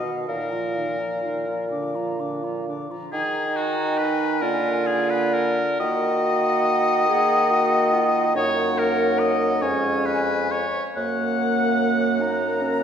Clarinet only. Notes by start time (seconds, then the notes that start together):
0.06 F#4
0.29 D#4
0.53 F4
0.78 D#4
1.00 F4
1.24 D#4
1.48 F4
1.72 D4
1.96 F4
2.20 D4
2.44 F4
2.68 D4
2.91 F4
3.14 D#4
4.42 F4
5.80 F#4
7.09 G#4
7.51 F#4
7.93 F4
8.36 D#4
9.62 C#4
10.96 A#3
12.20 D#4
12.61 C#4